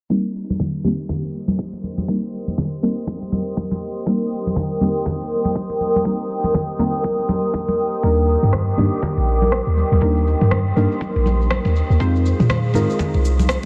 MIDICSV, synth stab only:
0, 0, Header, 1, 2, 480
1, 0, Start_track
1, 0, Key_signature, -3, "minor"
1, 0, Tempo, 495868
1, 98, Time_signature, 4, 2, 24, 8
1, 13216, End_track
2, 0, Start_track
2, 0, Title_t, "Synth stab"
2, 0, Program_c, 0, 62
2, 98, Note_on_c, 0, 55, 99
2, 98, Note_on_c, 0, 58, 86
2, 98, Note_on_c, 0, 60, 88
2, 98, Note_on_c, 0, 70, 108
2, 99, Note_on_c, 0, 63, 89
2, 795, Note_off_c, 0, 55, 0
2, 795, Note_off_c, 0, 58, 0
2, 795, Note_off_c, 0, 60, 0
2, 795, Note_off_c, 0, 63, 0
2, 795, Note_off_c, 0, 70, 0
2, 818, Note_on_c, 0, 55, 71
2, 818, Note_on_c, 0, 58, 65
2, 818, Note_on_c, 0, 60, 66
2, 818, Note_on_c, 0, 63, 67
2, 818, Note_on_c, 0, 67, 76
2, 1995, Note_off_c, 0, 55, 0
2, 1995, Note_off_c, 0, 58, 0
2, 1995, Note_off_c, 0, 60, 0
2, 1995, Note_off_c, 0, 63, 0
2, 1995, Note_off_c, 0, 67, 0
2, 2015, Note_on_c, 0, 70, 89
2, 2016, Note_on_c, 0, 55, 82
2, 2016, Note_on_c, 0, 58, 75
2, 2016, Note_on_c, 0, 60, 75
2, 2016, Note_on_c, 0, 63, 74
2, 2713, Note_off_c, 0, 60, 0
2, 2713, Note_off_c, 0, 70, 0
2, 2714, Note_off_c, 0, 55, 0
2, 2714, Note_off_c, 0, 58, 0
2, 2714, Note_off_c, 0, 63, 0
2, 2736, Note_on_c, 0, 58, 71
2, 2736, Note_on_c, 0, 63, 71
2, 2736, Note_on_c, 0, 70, 84
2, 2737, Note_on_c, 0, 55, 78
2, 2737, Note_on_c, 0, 60, 74
2, 3914, Note_off_c, 0, 55, 0
2, 3914, Note_off_c, 0, 58, 0
2, 3914, Note_off_c, 0, 60, 0
2, 3914, Note_off_c, 0, 63, 0
2, 3914, Note_off_c, 0, 70, 0
2, 3936, Note_on_c, 0, 55, 95
2, 3936, Note_on_c, 0, 58, 87
2, 3936, Note_on_c, 0, 60, 86
2, 3936, Note_on_c, 0, 63, 87
2, 3936, Note_on_c, 0, 70, 107
2, 4634, Note_off_c, 0, 55, 0
2, 4634, Note_off_c, 0, 58, 0
2, 4634, Note_off_c, 0, 60, 0
2, 4634, Note_off_c, 0, 63, 0
2, 4634, Note_off_c, 0, 70, 0
2, 4656, Note_on_c, 0, 55, 71
2, 4656, Note_on_c, 0, 58, 66
2, 4656, Note_on_c, 0, 60, 65
2, 4656, Note_on_c, 0, 63, 65
2, 4656, Note_on_c, 0, 67, 81
2, 5834, Note_off_c, 0, 55, 0
2, 5834, Note_off_c, 0, 58, 0
2, 5834, Note_off_c, 0, 60, 0
2, 5834, Note_off_c, 0, 63, 0
2, 5834, Note_off_c, 0, 67, 0
2, 5856, Note_on_c, 0, 60, 76
2, 5856, Note_on_c, 0, 63, 74
2, 5856, Note_on_c, 0, 70, 90
2, 5857, Note_on_c, 0, 55, 83
2, 5857, Note_on_c, 0, 58, 76
2, 6553, Note_off_c, 0, 63, 0
2, 6554, Note_off_c, 0, 55, 0
2, 6554, Note_off_c, 0, 58, 0
2, 6554, Note_off_c, 0, 60, 0
2, 6554, Note_off_c, 0, 70, 0
2, 6575, Note_on_c, 0, 55, 79
2, 6575, Note_on_c, 0, 60, 70
2, 6575, Note_on_c, 0, 63, 74
2, 6575, Note_on_c, 0, 70, 87
2, 6576, Note_on_c, 0, 58, 73
2, 7753, Note_off_c, 0, 55, 0
2, 7753, Note_off_c, 0, 58, 0
2, 7753, Note_off_c, 0, 60, 0
2, 7753, Note_off_c, 0, 63, 0
2, 7753, Note_off_c, 0, 70, 0
2, 7776, Note_on_c, 0, 58, 90
2, 7776, Note_on_c, 0, 63, 89
2, 7777, Note_on_c, 0, 55, 98
2, 7777, Note_on_c, 0, 62, 86
2, 7777, Note_on_c, 0, 70, 109
2, 8474, Note_off_c, 0, 55, 0
2, 8474, Note_off_c, 0, 58, 0
2, 8474, Note_off_c, 0, 62, 0
2, 8474, Note_off_c, 0, 63, 0
2, 8474, Note_off_c, 0, 70, 0
2, 8497, Note_on_c, 0, 55, 72
2, 8497, Note_on_c, 0, 62, 65
2, 8497, Note_on_c, 0, 63, 66
2, 8497, Note_on_c, 0, 67, 79
2, 8498, Note_on_c, 0, 58, 66
2, 9674, Note_off_c, 0, 55, 0
2, 9674, Note_off_c, 0, 62, 0
2, 9674, Note_off_c, 0, 63, 0
2, 9674, Note_off_c, 0, 67, 0
2, 9675, Note_off_c, 0, 58, 0
2, 9696, Note_on_c, 0, 55, 85
2, 9696, Note_on_c, 0, 62, 75
2, 9696, Note_on_c, 0, 70, 91
2, 9697, Note_on_c, 0, 58, 76
2, 9697, Note_on_c, 0, 63, 77
2, 10394, Note_off_c, 0, 55, 0
2, 10394, Note_off_c, 0, 58, 0
2, 10394, Note_off_c, 0, 62, 0
2, 10394, Note_off_c, 0, 63, 0
2, 10394, Note_off_c, 0, 70, 0
2, 10415, Note_on_c, 0, 58, 70
2, 10415, Note_on_c, 0, 63, 70
2, 10416, Note_on_c, 0, 55, 82
2, 10416, Note_on_c, 0, 62, 71
2, 10416, Note_on_c, 0, 70, 88
2, 11593, Note_off_c, 0, 55, 0
2, 11593, Note_off_c, 0, 58, 0
2, 11593, Note_off_c, 0, 62, 0
2, 11593, Note_off_c, 0, 63, 0
2, 11593, Note_off_c, 0, 70, 0
2, 11615, Note_on_c, 0, 56, 96
2, 11615, Note_on_c, 0, 63, 90
2, 11615, Note_on_c, 0, 72, 109
2, 11616, Note_on_c, 0, 60, 89
2, 11616, Note_on_c, 0, 65, 88
2, 12313, Note_off_c, 0, 56, 0
2, 12313, Note_off_c, 0, 60, 0
2, 12313, Note_off_c, 0, 63, 0
2, 12313, Note_off_c, 0, 65, 0
2, 12313, Note_off_c, 0, 72, 0
2, 12337, Note_on_c, 0, 56, 71
2, 12337, Note_on_c, 0, 60, 64
2, 12337, Note_on_c, 0, 63, 65
2, 12338, Note_on_c, 0, 65, 68
2, 12338, Note_on_c, 0, 70, 78
2, 13216, Note_off_c, 0, 56, 0
2, 13216, Note_off_c, 0, 60, 0
2, 13216, Note_off_c, 0, 63, 0
2, 13216, Note_off_c, 0, 65, 0
2, 13216, Note_off_c, 0, 70, 0
2, 13216, End_track
0, 0, End_of_file